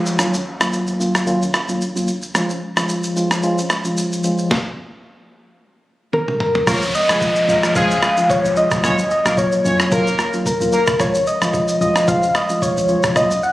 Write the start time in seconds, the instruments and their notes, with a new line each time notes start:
Already playing: tine electric piano F3 G#3 C#4 F4, downlifter
0.06 shaker
0.18 tine electric piano D#2 F#3 A#3 C#4 F4, cross-stick, shaker
0.34 shaker
0.60 tine electric piano D#2 F#3 A#3 C#4 F4, cross-stick, shaker
0.73 shaker
0.87 shaker
0.99 tine electric piano D#2 F#3 A#3 C#4 F4, shaker
1.15 cross-stick, shaker
1.26 tine electric piano D#2 F#3 A#3 C#4 F4, shaker
1.42 shaker
1.54 cross-stick, shaker
1.68 tine electric piano D#2 F#3 A#3 C#4 F4, shaker
1.81 shaker
1.95 tine electric piano D#2 F#3 A#3 C#4 F4, shaker
2.07 shaker
2.22 shaker
2.34 tine electric piano F3 G#3 C#4 F4, cross-stick, shaker
2.50 shaker
2.76 tine electric piano F3 G#3 C#4 F4, cross-stick, shaker
2.89 shaker
3.03 shaker
3.16 tine electric piano F3 G#3 C#4 F4, shaker
3.31 cross-stick, shaker
3.43 tine electric piano F3 G#3 C#4 F4, shaker
3.58 shaker
3.70 cross-stick, shaker
3.84 tine electric piano F3 G#3 C#4 F4, shaker
3.97 shaker
4.12 shaker
4.23 tine electric piano F3 G#3 C#4 F4, shaker
4.38 shaker
4.51 kick, snare
6.13 soft synth lead A#4, high tom
6.28 mid tom
6.40 soft synth lead A#4, mid tom
6.55 floor tom
6.67 808-style bass C#2, tine electric piano F3 G#3 C#4 F4, horn section A#3 A#4, soft synth lead C#5, kick, cross-stick, downlifter, shaker
6.82 shaker
6.94 soft synth lead D#5, shaker
7.09 808-style bass G#1, tine electric piano F3 G#3 C#4 F4, horn section G#3 G#4, cross-stick, shaker
7.21 kick, shaker
7.35 shaker
7.48 808-style bass D#2, tine electric piano F3 G#3 C#4 F4, horn section A#3 A#4, shaker
7.63 horn section A#3 A#4, cross-stick, shaker
7.75 808-style bass C#2, tine electric piano F3 G#3 C#4 F4, horn section G#3 G#4, soft synth lead F5, kick, shaker
7.91 shaker
8.03 cross-stick, shaker
8.17 tine electric piano F3 G#3 C#4 F4, shaker
8.30 soft synth lead C#5, kick, shaker
8.44 808-style bass C#2, shaker
8.56 tine electric piano F3 G#3 C#4 F4, soft synth lead D#5, shaker
8.71 808-style bass C#2, kick, cross-stick, shaker
8.83 808-style bass D#2, tine electric piano F#3 A#3 C#4 F4, horn section C#4 C#5, kick, cross-stick, shaker
8.98 shaker
9.10 soft synth lead D#5, shaker
9.25 808-style bass A#1, tine electric piano F#3 A#3 C#4 F4, horn section A#3 A#4, cross-stick, shaker
9.37 soft synth lead C#5, kick, shaker
9.52 shaker
9.64 808-style bass F2, tine electric piano F#3 A#3 C#4 F4, horn section C#4 C#5, shaker
9.79 horn section C#4 C#5, cross-stick, shaker
9.91 808-style bass D#2, tine electric piano F#3 A#3 C#4 F4, horn section A#3 A#4, soft synth lead A#4, kick, shaker
10.07 shaker
10.19 soft synth lead A#4, cross-stick, shaker
10.33 tine electric piano F#3 A#3 C#4 F4, shaker
10.46 soft synth lead A#4, kick, shaker
10.60 808-style bass D#2, tine electric piano F#3 A#3 C#4 F4, shaker
10.72 horn section A#3 A#4, soft synth lead A#4, shaker
10.87 808-style bass C2, kick, cross-stick, shaker
10.99 808-style bass C#2, tine electric piano F3 G#3 C#4 F4, soft synth lead C#5, kick, cross-stick, shaker
11.14 shaker
11.26 soft synth lead D#5, shaker
11.41 808-style bass G#1, tine electric piano F3 G#3 C#4 F4, cross-stick, shaker
11.53 kick, shaker
11.68 shaker
11.80 808-style bass D#2, tine electric piano F3 G#3 C#4 F4, soft synth lead D#5, shaker
11.96 cross-stick, shaker
12.07 808-style bass C#2, tine electric piano F3 G#3 C#4 F4, soft synth lead F5, kick, shaker
12.23 shaker
12.29 soft synth lead F5
12.35 soft synth lead D#5, cross-stick, shaker
12.49 tine electric piano F3 G#3 C#4 F4, shaker
12.62 soft synth lead C#5, kick, shaker
12.77 808-style bass C#2, shaker
12.88 tine electric piano F3 G#3 C#4 F4, shaker
13.03 808-style bass C#2, kick, cross-stick, shaker
13.15 808-style bass D#2, tine electric piano F#3 A#3 C#4 F4, soft synth lead D#5, kick, cross-stick, shaker
13.31 shaker
13.43 soft synth lead F#5, shaker